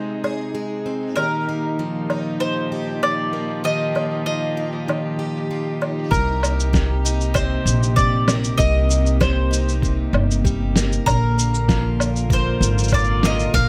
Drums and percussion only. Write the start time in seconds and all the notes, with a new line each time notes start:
0.24 low woodblock, shaker
0.40 shaker
0.56 shaker
0.87 shaker
1.02 shaker
1.17 low woodblock, shaker
1.48 shaker
1.80 shaker
2.10 low woodblock, shaker
2.26 shaker
2.42 shaker
2.73 shaker
2.88 shaker
3.03 low woodblock, shaker
3.35 shaker
3.50 shaker
3.66 shaker
3.96 low woodblock, shaker
4.12 shaker
4.59 shaker
4.75 shaker
4.89 low woodblock, shaker
5.21 shaker
5.36 shaker
5.52 shaker
5.82 low woodblock, shaker
5.99 shaker
6.12 kick, shaker
6.43 low woodblock, shaker
6.60 shaker
6.73 kick, snare, shaker
7.06 shaker
7.21 shaker
7.35 kick, low woodblock, shaker
7.67 shaker
7.83 shaker
7.97 kick, shaker
8.28 snare, low woodblock, shaker
8.44 shaker
8.59 kick, shaker
8.90 shaker
9.06 shaker
9.21 kick, snare, low woodblock, shaker
9.53 shaker
9.69 shaker
9.82 kick, shaker
10.14 low woodblock
10.31 shaker
10.44 kick, shaker
10.76 snare, shaker
10.92 shaker
11.06 kick, low woodblock, shaker
11.39 shaker
11.54 shaker
11.68 kick, snare, shaker
12.00 low woodblock, shaker
12.16 shaker
12.30 kick, shaker
12.63 shaker
12.78 shaker
12.83 shaker
12.88 shaker
12.92 kick, low woodblock, shaker
12.98 shaker
13.04 shaker
13.23 snare, shaker
13.39 shaker
13.54 kick, shaker